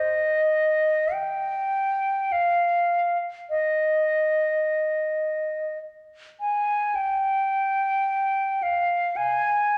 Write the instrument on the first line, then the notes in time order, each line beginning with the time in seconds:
flute
Already playing: D#5
1.13 G5
2.32 F5
3.50 D#5
6.40 G#5
6.95 G5
8.63 F5
9.16 G#5